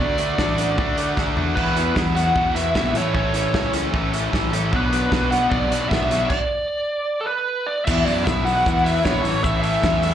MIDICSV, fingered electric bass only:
0, 0, Header, 1, 2, 480
1, 0, Start_track
1, 0, Tempo, 393701
1, 1910, Time_signature, 4, 2, 24, 8
1, 12364, End_track
2, 0, Start_track
2, 0, Title_t, "Fingered electric bass"
2, 0, Program_c, 0, 33
2, 0, Note_on_c, 0, 38, 91
2, 409, Note_off_c, 0, 38, 0
2, 465, Note_on_c, 0, 33, 91
2, 955, Note_off_c, 0, 33, 0
2, 955, Note_on_c, 0, 38, 83
2, 1374, Note_off_c, 0, 38, 0
2, 1427, Note_on_c, 0, 38, 72
2, 1641, Note_off_c, 0, 38, 0
2, 1648, Note_on_c, 0, 40, 75
2, 1874, Note_off_c, 0, 40, 0
2, 1910, Note_on_c, 0, 40, 89
2, 2333, Note_off_c, 0, 40, 0
2, 2391, Note_on_c, 0, 40, 96
2, 2814, Note_off_c, 0, 40, 0
2, 2872, Note_on_c, 0, 40, 92
2, 3084, Note_off_c, 0, 40, 0
2, 3108, Note_on_c, 0, 40, 84
2, 3322, Note_off_c, 0, 40, 0
2, 3359, Note_on_c, 0, 34, 90
2, 3569, Note_off_c, 0, 34, 0
2, 3575, Note_on_c, 0, 33, 90
2, 4320, Note_off_c, 0, 33, 0
2, 4320, Note_on_c, 0, 37, 90
2, 4742, Note_off_c, 0, 37, 0
2, 4799, Note_on_c, 0, 33, 98
2, 5221, Note_off_c, 0, 33, 0
2, 5278, Note_on_c, 0, 33, 94
2, 5763, Note_off_c, 0, 33, 0
2, 5763, Note_on_c, 0, 35, 91
2, 6185, Note_off_c, 0, 35, 0
2, 6238, Note_on_c, 0, 35, 99
2, 6662, Note_off_c, 0, 35, 0
2, 6726, Note_on_c, 0, 35, 92
2, 6936, Note_off_c, 0, 35, 0
2, 6958, Note_on_c, 0, 35, 89
2, 7171, Note_off_c, 0, 35, 0
2, 7200, Note_on_c, 0, 35, 100
2, 7623, Note_off_c, 0, 35, 0
2, 9604, Note_on_c, 0, 40, 90
2, 9812, Note_off_c, 0, 40, 0
2, 9837, Note_on_c, 0, 42, 94
2, 10048, Note_off_c, 0, 42, 0
2, 10080, Note_on_c, 0, 35, 90
2, 10499, Note_off_c, 0, 35, 0
2, 10557, Note_on_c, 0, 40, 93
2, 10976, Note_off_c, 0, 40, 0
2, 11040, Note_on_c, 0, 34, 89
2, 11247, Note_off_c, 0, 34, 0
2, 11263, Note_on_c, 0, 33, 96
2, 11895, Note_off_c, 0, 33, 0
2, 11988, Note_on_c, 0, 40, 107
2, 12364, Note_off_c, 0, 40, 0
2, 12364, End_track
0, 0, End_of_file